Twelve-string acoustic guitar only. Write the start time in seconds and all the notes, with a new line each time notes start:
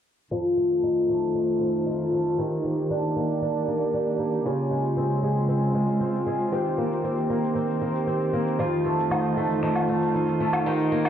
0.31 F2 F4
0.57 A3
0.83 D#4
1.09 A3
1.35 D#4
1.61 A3
1.86 D#4
2.12 A3
2.38 D#3 G4
2.64 A#3
2.90 D4
3.16 A#3
3.42 D4
3.68 A#3
3.94 D4
4.19 A#3
4.45 C#3 F4
4.71 G#3
4.97 C4
5.23 G#3
5.48 C4
5.75 G#3
6.00 C4
6.27 G#3
6.52 C3 G4
6.78 A#3
7.04 C4
7.30 A#3
7.55 C4
7.82 A#3
8.07 C4
8.33 A#3
8.59 F2 F4
8.85 A3
9.11 D#4
9.37 A3
9.63 D#4
9.89 A3
10.15 D#4
10.40 A3
10.66 D#3 G4
10.92 A#3